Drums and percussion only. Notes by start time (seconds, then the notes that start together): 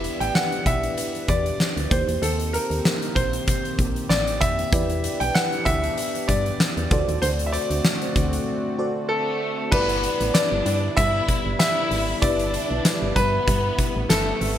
0.04 closed hi-hat
0.21 closed hi-hat
0.35 snare
0.52 closed hi-hat
0.66 kick, closed hi-hat
0.83 closed hi-hat
0.98 closed hi-hat
1.15 closed hi-hat
1.28 kick, closed hi-hat
1.46 closed hi-hat
1.60 snare
1.77 closed hi-hat
1.91 kick, closed hi-hat
2.09 closed hi-hat
2.23 closed hi-hat
2.40 closed hi-hat
2.54 closed hi-hat
2.71 closed hi-hat
2.85 snare
3.02 closed hi-hat
3.16 kick, closed hi-hat
3.33 closed hi-hat
3.48 kick, closed hi-hat
3.65 closed hi-hat
3.79 kick, closed hi-hat
3.96 closed hi-hat
4.10 snare
4.27 closed hi-hat
4.41 kick, closed hi-hat
4.59 closed hi-hat
4.73 kick, closed hi-hat
4.90 closed hi-hat
5.04 closed hi-hat
5.21 closed hi-hat
5.35 snare
5.52 closed hi-hat
5.66 kick, closed hi-hat
5.84 closed hi-hat
5.98 closed hi-hat
6.15 closed hi-hat
6.29 kick, closed hi-hat
6.46 closed hi-hat
6.60 snare
6.77 closed hi-hat
6.91 kick, closed hi-hat
7.09 closed hi-hat
7.22 closed hi-hat
7.39 closed hi-hat
7.54 closed hi-hat
7.71 closed hi-hat
7.85 snare
8.02 closed hi-hat
8.16 kick, closed hi-hat
8.33 closed hi-hat
9.72 kick, crash
9.89 closed hi-hat
10.03 closed hi-hat
10.21 closed hi-hat
10.34 snare, closed hi-hat, tambourine
10.66 closed hi-hat
10.97 kick, closed hi-hat
11.29 kick, closed hi-hat
11.60 snare, closed hi-hat, tambourine
11.91 open hi-hat
12.22 kick, closed hi-hat
12.39 closed hi-hat
12.54 closed hi-hat
12.85 snare, closed hi-hat, tambourine
13.16 kick, closed hi-hat
13.48 kick, closed hi-hat
13.79 kick, closed hi-hat
14.10 snare, closed hi-hat, tambourine
14.41 open hi-hat